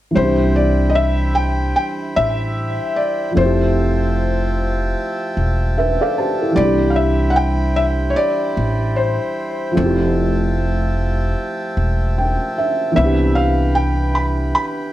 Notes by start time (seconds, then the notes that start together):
0.11 E3 G3
0.16 C2 C4 E4 C5 G5 B5
0.21 D4 G4
0.56 D5
0.90 D#5
0.95 E5
1.35 G5
1.76 G5
2.16 A1 E5
2.96 D5
3.31 F3 A3
3.36 F1 F3 C4 C5 E5 G5 A5
3.42 E4 G4
5.37 E1
5.78 B4 E5
6.01 A4 D5 F5
6.18 G4 C5 A5
6.41 E4 A4
6.51 E3 G3
6.56 C2 C4 E4 C5 D5 B5
6.62 D4 G4
6.90 F5
6.96 E5
7.30 F#5
7.36 G5
7.76 E5
8.10 C#5
8.16 D5
8.57 A1
8.96 C5
9.71 F3 A3
9.76 F1 F3 C4 E5 A5
9.82 E4 G4
11.77 E1
12.18 G5
12.58 E5
12.92 E3 B3
12.96 C2 E3 C4 B4 E5 B5
13.02 D4 G4
13.35 F5
13.75 G5
14.15 B5
14.55 B5